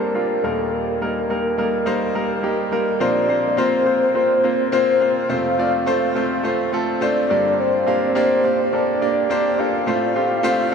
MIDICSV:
0, 0, Header, 1, 3, 480
1, 0, Start_track
1, 0, Key_signature, -2, "major"
1, 0, Tempo, 570885
1, 609, Time_signature, 4, 2, 24, 8
1, 9035, End_track
2, 0, Start_track
2, 0, Title_t, "Soft synth lead"
2, 0, Program_c, 0, 80
2, 26, Note_on_c, 0, 70, 82
2, 368, Note_on_c, 0, 69, 76
2, 380, Note_off_c, 0, 70, 0
2, 609, Note_on_c, 0, 70, 91
2, 622, Note_off_c, 0, 69, 0
2, 2048, Note_off_c, 0, 70, 0
2, 2053, Note_on_c, 0, 70, 80
2, 2527, Note_on_c, 0, 74, 102
2, 2540, Note_off_c, 0, 70, 0
2, 3008, Note_off_c, 0, 74, 0
2, 3013, Note_on_c, 0, 72, 104
2, 3460, Note_off_c, 0, 72, 0
2, 3492, Note_on_c, 0, 72, 93
2, 3939, Note_off_c, 0, 72, 0
2, 3975, Note_on_c, 0, 72, 92
2, 4450, Note_on_c, 0, 77, 120
2, 4462, Note_off_c, 0, 72, 0
2, 5412, Note_off_c, 0, 77, 0
2, 5903, Note_on_c, 0, 74, 88
2, 6382, Note_on_c, 0, 72, 106
2, 6395, Note_off_c, 0, 74, 0
2, 6855, Note_off_c, 0, 72, 0
2, 6860, Note_on_c, 0, 72, 109
2, 7303, Note_off_c, 0, 72, 0
2, 7341, Note_on_c, 0, 74, 107
2, 8065, Note_on_c, 0, 77, 127
2, 8077, Note_off_c, 0, 74, 0
2, 9035, Note_off_c, 0, 77, 0
2, 9035, End_track
3, 0, Start_track
3, 0, Title_t, "Grand piano"
3, 0, Program_c, 1, 0
3, 0, Control_c, 1, 64, 127
3, 0, Note_on_c, 1, 43, 51
3, 0, Note_on_c, 1, 50, 51
3, 0, Note_on_c, 1, 55, 62
3, 0, Note_on_c, 1, 58, 53
3, 0, Note_on_c, 1, 62, 58
3, 0, Note_on_c, 1, 69, 85
3, 0, Note_on_c, 1, 70, 67
3, 0, Note_on_c, 1, 72, 68
3, 86, Note_off_c, 1, 55, 0
3, 88, Note_off_c, 1, 62, 0
3, 89, Note_off_c, 1, 58, 0
3, 90, Note_off_c, 1, 72, 0
3, 119, Note_on_c, 1, 55, 60
3, 124, Note_on_c, 1, 62, 58
3, 125, Note_on_c, 1, 58, 59
3, 129, Note_on_c, 1, 65, 67
3, 327, Note_off_c, 1, 55, 0
3, 330, Note_off_c, 1, 58, 0
3, 330, Note_off_c, 1, 62, 0
3, 333, Note_off_c, 1, 65, 0
3, 334, Note_off_c, 1, 50, 0
3, 336, Note_off_c, 1, 43, 0
3, 362, Note_on_c, 1, 55, 62
3, 366, Note_on_c, 1, 58, 61
3, 367, Note_on_c, 1, 39, 53
3, 368, Note_on_c, 1, 46, 53
3, 369, Note_on_c, 1, 63, 57
3, 372, Note_off_c, 1, 70, 0
3, 372, Note_on_c, 1, 70, 74
3, 377, Control_c, 1, 64, 0
3, 381, Note_off_c, 1, 69, 0
3, 525, Control_c, 1, 64, 127
3, 774, Note_off_c, 1, 55, 0
3, 776, Note_off_c, 1, 58, 0
3, 778, Note_off_c, 1, 63, 0
3, 779, Note_off_c, 1, 70, 0
3, 849, Note_on_c, 1, 55, 61
3, 854, Note_on_c, 1, 58, 55
3, 855, Note_on_c, 1, 63, 60
3, 858, Note_on_c, 1, 70, 74
3, 1054, Note_off_c, 1, 55, 0
3, 1056, Note_off_c, 1, 58, 0
3, 1057, Note_off_c, 1, 63, 0
3, 1058, Note_off_c, 1, 70, 0
3, 1087, Note_on_c, 1, 55, 62
3, 1091, Note_on_c, 1, 58, 52
3, 1092, Note_on_c, 1, 63, 56
3, 1097, Note_on_c, 1, 70, 67
3, 1293, Note_off_c, 1, 55, 0
3, 1295, Note_off_c, 1, 58, 0
3, 1295, Note_off_c, 1, 63, 0
3, 1298, Note_off_c, 1, 70, 0
3, 1324, Note_on_c, 1, 55, 69
3, 1329, Note_on_c, 1, 58, 63
3, 1332, Note_on_c, 1, 63, 65
3, 1332, Note_on_c, 1, 70, 72
3, 1532, Note_off_c, 1, 55, 0
3, 1534, Note_off_c, 1, 58, 0
3, 1536, Note_off_c, 1, 63, 0
3, 1536, Note_off_c, 1, 70, 0
3, 1561, Note_on_c, 1, 55, 85
3, 1563, Note_on_c, 1, 63, 85
3, 1564, Note_on_c, 1, 58, 80
3, 1571, Note_on_c, 1, 72, 100
3, 1771, Note_off_c, 1, 55, 0
3, 1772, Note_off_c, 1, 58, 0
3, 1772, Note_off_c, 1, 63, 0
3, 1776, Note_off_c, 1, 72, 0
3, 1802, Note_on_c, 1, 55, 75
3, 1806, Note_on_c, 1, 58, 64
3, 1807, Note_on_c, 1, 63, 60
3, 1809, Note_on_c, 1, 70, 77
3, 2011, Note_off_c, 1, 55, 0
3, 2013, Note_off_c, 1, 58, 0
3, 2014, Note_off_c, 1, 63, 0
3, 2015, Note_off_c, 1, 70, 0
3, 2037, Note_on_c, 1, 55, 67
3, 2043, Note_on_c, 1, 58, 67
3, 2045, Note_on_c, 1, 63, 61
3, 2049, Note_on_c, 1, 67, 77
3, 2249, Note_off_c, 1, 55, 0
3, 2252, Note_off_c, 1, 58, 0
3, 2253, Note_off_c, 1, 63, 0
3, 2255, Note_off_c, 1, 67, 0
3, 2259, Note_off_c, 1, 39, 0
3, 2259, Note_off_c, 1, 46, 0
3, 2281, Note_on_c, 1, 55, 69
3, 2284, Note_on_c, 1, 58, 64
3, 2286, Note_on_c, 1, 63, 62
3, 2290, Note_on_c, 1, 70, 82
3, 2491, Note_off_c, 1, 55, 0
3, 2493, Note_off_c, 1, 58, 0
3, 2494, Note_off_c, 1, 63, 0
3, 2496, Note_off_c, 1, 70, 0
3, 2523, Note_on_c, 1, 60, 76
3, 2524, Note_on_c, 1, 53, 60
3, 2525, Note_on_c, 1, 58, 90
3, 2526, Note_on_c, 1, 46, 54
3, 2528, Note_on_c, 1, 65, 73
3, 2531, Note_on_c, 1, 72, 93
3, 2545, Control_c, 1, 64, 0
3, 2713, Control_c, 1, 64, 127
3, 2732, Note_off_c, 1, 60, 0
3, 2733, Note_off_c, 1, 58, 0
3, 2735, Note_off_c, 1, 65, 0
3, 2736, Note_off_c, 1, 72, 0
3, 2765, Note_on_c, 1, 58, 73
3, 2766, Note_on_c, 1, 60, 64
3, 2770, Note_on_c, 1, 65, 66
3, 2772, Note_on_c, 1, 72, 79
3, 2973, Note_off_c, 1, 58, 0
3, 2974, Note_off_c, 1, 60, 0
3, 2976, Note_off_c, 1, 65, 0
3, 2977, Note_off_c, 1, 72, 0
3, 3003, Note_on_c, 1, 58, 86
3, 3004, Note_on_c, 1, 60, 87
3, 3009, Note_on_c, 1, 65, 87
3, 3013, Note_on_c, 1, 72, 98
3, 3212, Note_off_c, 1, 58, 0
3, 3213, Note_off_c, 1, 60, 0
3, 3216, Note_off_c, 1, 65, 0
3, 3218, Note_off_c, 1, 72, 0
3, 3241, Note_on_c, 1, 58, 67
3, 3245, Note_on_c, 1, 60, 59
3, 3248, Note_on_c, 1, 65, 58
3, 3249, Note_on_c, 1, 72, 74
3, 3452, Note_off_c, 1, 58, 0
3, 3454, Note_off_c, 1, 60, 0
3, 3455, Note_off_c, 1, 65, 0
3, 3456, Note_off_c, 1, 72, 0
3, 3486, Note_on_c, 1, 58, 70
3, 3488, Note_on_c, 1, 60, 62
3, 3491, Note_on_c, 1, 65, 65
3, 3492, Note_on_c, 1, 72, 78
3, 3694, Note_off_c, 1, 58, 0
3, 3695, Note_off_c, 1, 60, 0
3, 3697, Note_off_c, 1, 65, 0
3, 3697, Note_off_c, 1, 72, 0
3, 3731, Note_on_c, 1, 58, 75
3, 3732, Note_on_c, 1, 60, 65
3, 3734, Note_on_c, 1, 65, 66
3, 3740, Note_on_c, 1, 72, 76
3, 3937, Note_off_c, 1, 58, 0
3, 3937, Note_off_c, 1, 60, 0
3, 3938, Note_off_c, 1, 65, 0
3, 3941, Note_off_c, 1, 72, 0
3, 3970, Note_on_c, 1, 58, 96
3, 3970, Note_on_c, 1, 60, 90
3, 3977, Note_on_c, 1, 65, 79
3, 3977, Note_on_c, 1, 72, 101
3, 4176, Note_off_c, 1, 58, 0
3, 4176, Note_off_c, 1, 60, 0
3, 4180, Note_off_c, 1, 65, 0
3, 4180, Note_off_c, 1, 72, 0
3, 4209, Note_on_c, 1, 58, 70
3, 4213, Note_on_c, 1, 60, 65
3, 4216, Note_on_c, 1, 65, 66
3, 4221, Note_on_c, 1, 72, 74
3, 4416, Note_off_c, 1, 53, 0
3, 4416, Note_off_c, 1, 58, 0
3, 4417, Note_off_c, 1, 46, 0
3, 4418, Note_off_c, 1, 60, 0
3, 4419, Note_off_c, 1, 65, 0
3, 4422, Note_off_c, 1, 72, 0
3, 4447, Note_on_c, 1, 57, 82
3, 4448, Note_on_c, 1, 60, 75
3, 4452, Note_on_c, 1, 41, 58
3, 4452, Note_on_c, 1, 48, 56
3, 4452, Note_on_c, 1, 65, 75
3, 4454, Note_on_c, 1, 72, 94
3, 4464, Control_c, 1, 64, 0
3, 4627, Control_c, 1, 64, 127
3, 4654, Note_off_c, 1, 57, 0
3, 4655, Note_off_c, 1, 60, 0
3, 4657, Note_off_c, 1, 65, 0
3, 4658, Note_off_c, 1, 72, 0
3, 4695, Note_on_c, 1, 57, 76
3, 4699, Note_on_c, 1, 60, 70
3, 4699, Note_on_c, 1, 65, 72
3, 4704, Note_on_c, 1, 74, 81
3, 4899, Note_off_c, 1, 57, 0
3, 4901, Note_off_c, 1, 60, 0
3, 4901, Note_off_c, 1, 65, 0
3, 4903, Note_off_c, 1, 74, 0
3, 4930, Note_on_c, 1, 57, 95
3, 4933, Note_on_c, 1, 60, 76
3, 4936, Note_on_c, 1, 65, 81
3, 4939, Note_on_c, 1, 72, 100
3, 5136, Note_off_c, 1, 57, 0
3, 5137, Note_off_c, 1, 60, 0
3, 5139, Note_off_c, 1, 65, 0
3, 5140, Note_off_c, 1, 72, 0
3, 5170, Note_on_c, 1, 57, 80
3, 5174, Note_on_c, 1, 60, 72
3, 5175, Note_on_c, 1, 65, 76
3, 5181, Note_on_c, 1, 72, 86
3, 5376, Note_off_c, 1, 57, 0
3, 5378, Note_off_c, 1, 60, 0
3, 5378, Note_off_c, 1, 65, 0
3, 5382, Note_off_c, 1, 72, 0
3, 5409, Note_on_c, 1, 57, 83
3, 5414, Note_on_c, 1, 60, 75
3, 5416, Note_on_c, 1, 65, 76
3, 5421, Note_on_c, 1, 72, 94
3, 5615, Note_off_c, 1, 57, 0
3, 5618, Note_off_c, 1, 60, 0
3, 5619, Note_off_c, 1, 65, 0
3, 5621, Note_off_c, 1, 72, 0
3, 5654, Note_on_c, 1, 57, 82
3, 5658, Note_on_c, 1, 60, 78
3, 5662, Note_on_c, 1, 65, 78
3, 5666, Note_on_c, 1, 69, 93
3, 5858, Note_off_c, 1, 57, 0
3, 5860, Note_off_c, 1, 60, 0
3, 5862, Note_off_c, 1, 65, 0
3, 5864, Note_off_c, 1, 69, 0
3, 5894, Note_on_c, 1, 57, 96
3, 5897, Note_on_c, 1, 60, 85
3, 5902, Note_on_c, 1, 65, 83
3, 5902, Note_on_c, 1, 72, 99
3, 6098, Note_off_c, 1, 57, 0
3, 6099, Note_off_c, 1, 41, 0
3, 6099, Note_off_c, 1, 48, 0
3, 6099, Note_off_c, 1, 60, 0
3, 6102, Note_off_c, 1, 65, 0
3, 6102, Note_off_c, 1, 72, 0
3, 6136, Note_on_c, 1, 58, 77
3, 6137, Note_on_c, 1, 62, 69
3, 6139, Note_on_c, 1, 50, 64
3, 6143, Note_on_c, 1, 43, 60
3, 6143, Note_on_c, 1, 67, 69
3, 6144, Control_c, 1, 64, 0
3, 6144, Note_on_c, 1, 74, 83
3, 6270, Control_c, 1, 64, 127
3, 6543, Note_off_c, 1, 58, 0
3, 6543, Note_off_c, 1, 62, 0
3, 6546, Note_off_c, 1, 67, 0
3, 6546, Note_off_c, 1, 74, 0
3, 6613, Note_on_c, 1, 58, 76
3, 6618, Note_on_c, 1, 62, 67
3, 6620, Note_on_c, 1, 67, 69
3, 6622, Note_on_c, 1, 77, 84
3, 6817, Note_off_c, 1, 58, 0
3, 6819, Note_off_c, 1, 62, 0
3, 6821, Note_off_c, 1, 67, 0
3, 6821, Note_off_c, 1, 77, 0
3, 6854, Note_on_c, 1, 58, 94
3, 6859, Note_on_c, 1, 62, 85
3, 6859, Note_on_c, 1, 67, 87
3, 6864, Note_on_c, 1, 74, 95
3, 7057, Note_off_c, 1, 58, 0
3, 7060, Note_off_c, 1, 62, 0
3, 7060, Note_off_c, 1, 67, 0
3, 7062, Note_off_c, 1, 74, 0
3, 7096, Note_on_c, 1, 58, 66
3, 7097, Note_on_c, 1, 62, 61
3, 7101, Note_on_c, 1, 67, 61
3, 7105, Note_on_c, 1, 74, 81
3, 7298, Note_off_c, 1, 58, 0
3, 7299, Note_off_c, 1, 62, 0
3, 7301, Note_off_c, 1, 67, 0
3, 7302, Note_off_c, 1, 74, 0
3, 7336, Note_on_c, 1, 58, 69
3, 7337, Note_on_c, 1, 62, 63
3, 7343, Note_on_c, 1, 67, 63
3, 7344, Note_on_c, 1, 69, 79
3, 7538, Note_off_c, 1, 58, 0
3, 7538, Note_off_c, 1, 62, 0
3, 7541, Note_off_c, 1, 67, 0
3, 7542, Note_off_c, 1, 69, 0
3, 7580, Note_on_c, 1, 58, 72
3, 7581, Note_on_c, 1, 62, 69
3, 7584, Note_on_c, 1, 67, 67
3, 7586, Note_on_c, 1, 74, 86
3, 7780, Note_off_c, 1, 58, 0
3, 7780, Note_off_c, 1, 62, 0
3, 7782, Note_off_c, 1, 67, 0
3, 7783, Note_off_c, 1, 74, 0
3, 7816, Note_on_c, 1, 58, 85
3, 7823, Note_on_c, 1, 62, 86
3, 7823, Note_on_c, 1, 67, 85
3, 7826, Note_on_c, 1, 72, 102
3, 8018, Note_off_c, 1, 58, 0
3, 8020, Note_off_c, 1, 50, 0
3, 8021, Note_off_c, 1, 62, 0
3, 8021, Note_off_c, 1, 67, 0
3, 8022, Note_off_c, 1, 43, 0
3, 8022, Note_off_c, 1, 72, 0
3, 8057, Note_on_c, 1, 58, 71
3, 8060, Note_on_c, 1, 62, 66
3, 8067, Note_on_c, 1, 67, 67
3, 8068, Note_on_c, 1, 69, 77
3, 8258, Note_off_c, 1, 58, 0
3, 8259, Note_off_c, 1, 62, 0
3, 8263, Note_off_c, 1, 67, 0
3, 8264, Note_off_c, 1, 69, 0
3, 8294, Note_on_c, 1, 57, 88
3, 8295, Note_on_c, 1, 60, 77
3, 8299, Note_on_c, 1, 45, 58
3, 8300, Control_c, 1, 64, 0
3, 8301, Note_on_c, 1, 65, 79
3, 8305, Note_on_c, 1, 72, 88
3, 8436, Control_c, 1, 64, 127
3, 8496, Note_off_c, 1, 57, 0
3, 8497, Note_off_c, 1, 60, 0
3, 8500, Note_off_c, 1, 65, 0
3, 8502, Note_off_c, 1, 72, 0
3, 8532, Note_on_c, 1, 57, 75
3, 8538, Note_on_c, 1, 60, 66
3, 8538, Note_on_c, 1, 65, 66
3, 8542, Note_on_c, 1, 67, 83
3, 8735, Note_off_c, 1, 57, 0
3, 8738, Note_off_c, 1, 60, 0
3, 8738, Note_off_c, 1, 65, 0
3, 8740, Note_off_c, 1, 67, 0
3, 8771, Note_on_c, 1, 57, 109
3, 8776, Note_on_c, 1, 60, 98
3, 8778, Note_on_c, 1, 65, 98
3, 8780, Note_on_c, 1, 72, 119
3, 8974, Note_off_c, 1, 57, 0
3, 8977, Note_off_c, 1, 60, 0
3, 8978, Note_off_c, 1, 65, 0
3, 8979, Note_off_c, 1, 72, 0
3, 9007, Note_on_c, 1, 57, 82
3, 9010, Note_on_c, 1, 60, 77
3, 9035, Note_off_c, 1, 45, 0
3, 9035, Note_off_c, 1, 57, 0
3, 9035, Note_off_c, 1, 60, 0
3, 9035, End_track
0, 0, End_of_file